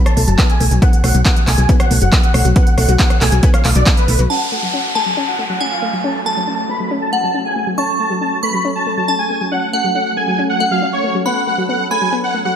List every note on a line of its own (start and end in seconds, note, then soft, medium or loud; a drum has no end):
0.06 0.22 A5 medium
0.06 cross-stick medium
0.06 closed hi-hat medium
0.17 0.25 B1 medium
0.17 0.23 A3 medium
0.17 open hi-hat loud
0.28 0.36 F#1 medium
0.28 0.32 F#3 medium
0.28 0.43 A5 medium
0.28 closed hi-hat medium
0.39 0.43 B3 medium
0.39 kick loud
0.39 clap loud
0.39 closed hi-hat medium
0.49 0.73 G#5 loud
0.49 closed hi-hat soft
0.60 0.69 B1 medium
0.60 0.64 A3 medium
0.60 open hi-hat loud
0.71 0.80 B1 medium
0.71 0.78 F#3 medium
0.71 closed hi-hat medium
0.82 0.89 B3 loud
0.82 0.98 F#5 loud
0.82 kick loud
0.82 closed hi-hat medium
0.93 closed hi-hat medium
1.04 1.12 B1 medium
1.04 1.10 A3 medium
1.04 1.19 F#5 medium
1.04 cross-stick medium
1.04 open hi-hat loud
1.15 1.23 B1 medium
1.15 1.19 F#3 medium
1.15 closed hi-hat medium
1.25 1.30 B3 medium
1.25 1.41 F#5 medium
1.25 kick loud
1.25 clap loud
1.25 closed hi-hat medium
1.36 closed hi-hat medium
1.47 1.56 B1 loud
1.47 1.51 A3 medium
1.47 1.71 G#5 loud
1.47 clap medium
1.47 open hi-hat loud
1.58 1.66 B1 medium
1.58 1.65 F#3 medium
1.58 closed hi-hat medium
1.69 1.76 B3 loud
1.69 kick loud
1.69 closed hi-hat medium
1.80 1.95 F#5 medium
1.80 cross-stick medium
1.80 closed hi-hat medium
1.91 1.99 B1 medium
1.91 1.97 A3 medium
1.91 open hi-hat loud
2.01 2.10 F#1 medium
2.01 2.06 F#3 medium
2.01 2.17 F#5 medium
2.01 closed hi-hat medium
2.12 2.17 B3 medium
2.12 kick loud
2.12 clap loud
2.12 closed hi-hat medium
2.23 2.47 F#5 loud
2.23 closed hi-hat medium
2.34 2.43 B1 medium
2.34 2.38 A3 medium
2.34 cross-stick medium
2.34 open hi-hat loud
2.45 2.53 B1 medium
2.45 2.52 F#3 medium
2.45 closed hi-hat medium
2.56 2.63 B3 loud
2.56 2.72 F#5 loud
2.56 kick loud
2.56 closed hi-hat medium
2.67 closed hi-hat medium
2.78 2.86 B1 medium
2.78 2.84 A3 medium
2.78 2.93 F#5 medium
2.78 cross-stick medium
2.78 open hi-hat loud
2.89 2.97 B1 medium
2.89 2.93 F#3 medium
2.89 closed hi-hat medium
2.99 3.04 B3 medium
2.99 3.15 F#5 medium
2.99 kick loud
2.99 clap loud
2.99 closed hi-hat medium
3.10 cross-stick medium
3.10 closed hi-hat medium
3.21 3.30 B1 loud
3.21 3.25 A3 medium
3.21 3.45 G#5 loud
3.21 clap medium
3.21 open hi-hat loud
3.32 3.40 B1 medium
3.32 3.39 F#3 medium
3.32 closed hi-hat medium
3.43 3.50 B3 loud
3.43 kick loud
3.43 closed hi-hat medium
3.54 3.69 F5 medium
3.54 cross-stick medium
3.54 closed hi-hat medium
3.65 3.73 B1 medium
3.65 3.71 A3 medium
3.65 clap medium
3.65 open hi-hat loud
3.75 3.84 B1 medium
3.75 3.80 F#3 medium
3.75 3.91 D5 medium
3.75 closed hi-hat medium
3.86 3.90 B3 medium
3.86 kick loud
3.86 clap loud
3.86 closed hi-hat medium
3.97 4.21 B4 medium
3.97 closed hi-hat medium
4.08 4.17 B1 medium
4.08 4.12 A3 medium
4.08 open hi-hat loud
4.19 4.27 B1 medium
4.19 4.26 F#3 medium
4.19 closed hi-hat medium
4.30 12.56 F#3 medium
4.30 11.22 A3 medium
4.30 11.22 C#4 medium
4.30 4.37 C#4 loud
4.30 12.56 A4 medium
4.30 4.46 F#5 medium
4.30 4.87 A5 medium
4.30 downlifter medium
4.52 4.58 A3 medium
4.52 4.67 F#5 medium
4.63 4.67 F#3 medium
4.73 4.77 C#4 medium
4.73 4.89 F#5 medium
4.95 4.99 A3 medium
4.95 5.19 G#5 medium
4.95 5.52 A5 medium
5.06 5.13 F#3 medium
5.17 5.24 C#4 loud
5.27 5.43 F#5 medium
5.39 5.45 A3 medium
5.49 5.54 F#3 medium
5.49 5.65 F#5 medium
5.60 5.64 C#4 medium
5.60 6.17 G#5 medium
5.71 5.95 F5 loud
5.82 5.86 A3 medium
5.93 6.00 F#3 medium
6.04 6.11 C#4 loud
6.04 6.19 A5 medium
6.25 6.32 A3 medium
6.25 6.41 A5 medium
6.25 7.04 A5 medium
6.37 6.41 F#3 medium
6.47 6.51 C#4 medium
6.47 6.63 A5 medium
6.69 6.73 A3 medium
6.69 6.93 B5 medium
6.80 6.87 F#3 medium
6.91 6.97 C#4 loud
7.02 7.17 A5 medium
7.13 7.19 A3 medium
7.13 7.69 F#5 medium
7.23 7.27 F#3 medium
7.23 7.39 A5 medium
7.34 7.38 C#4 medium
7.45 7.69 G#5 loud
7.56 7.60 A3 medium
7.67 7.73 F#3 medium
7.78 7.84 C#4 loud
7.78 7.93 A5 loud
7.78 8.34 C#6 loud
7.99 8.06 A3 medium
7.99 8.15 A5 medium
8.10 8.14 F#3 medium
8.21 8.25 C#4 medium
8.21 8.37 A5 medium
8.43 8.47 A3 medium
8.43 8.66 B5 medium
8.43 8.99 C#6 medium
8.54 8.60 F#3 medium
8.65 8.71 C#4 loud
8.75 8.91 A5 medium
8.87 8.93 A3 medium
8.97 9.01 F#3 medium
8.97 9.13 A5 medium
9.08 9.12 C#4 medium
9.08 9.65 A5 medium
9.19 9.42 G#5 loud
9.30 9.34 A3 medium
9.41 9.47 F#3 medium
9.51 9.58 C#4 medium
9.51 9.67 F#5 loud
9.73 9.80 A3 medium
9.73 10.52 F#5 medium
9.73 9.89 F#5 medium
9.84 9.88 F#3 medium
9.95 9.99 C#4 medium
9.95 10.11 F#5 medium
10.17 10.21 A3 medium
10.17 10.40 G#5 medium
10.28 10.34 F#3 medium
10.39 10.45 C#4 loud
10.50 10.65 F#5 medium
10.60 10.67 A3 medium
10.60 11.17 F#5 medium
10.71 10.75 F#3 medium
10.71 10.87 F5 medium
10.82 10.86 C#4 medium
10.93 11.16 C#5 medium
11.04 11.08 A3 medium
11.15 11.21 F#3 medium
11.25 11.32 B3 loud
11.25 12.56 B3 medium
11.25 12.56 D4 medium
11.25 11.41 F#5 loud
11.25 11.82 B5 medium
11.47 11.54 A3 medium
11.47 11.63 F#5 medium
11.58 11.62 F#3 medium
11.69 11.73 B3 medium
11.69 11.85 F#5 medium
11.91 11.95 A3 medium
11.91 12.14 G#5 loud
11.91 12.47 B5 medium
12.02 12.08 F#3 medium
12.13 12.19 B3 loud
12.24 12.39 F#5 medium
12.34 12.41 A3 medium
12.45 12.49 F#3 medium
12.45 12.56 F#5 medium